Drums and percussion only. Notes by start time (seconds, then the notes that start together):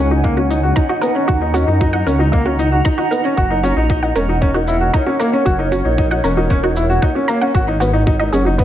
0.24 kick
0.51 shaker
0.76 kick
1.02 shaker
1.29 kick
1.55 shaker
1.81 kick
2.07 shaker
2.33 kick
2.59 shaker
2.85 kick
3.12 shaker
3.37 kick
3.64 shaker
3.90 kick
4.16 shaker
4.42 kick
4.68 shaker
4.94 kick
5.20 shaker
5.46 kick
5.72 shaker
5.98 kick
6.24 shaker
6.50 kick
6.76 shaker
7.02 kick
7.29 shaker
7.55 kick
7.81 shaker
8.07 kick
8.33 shaker
8.59 kick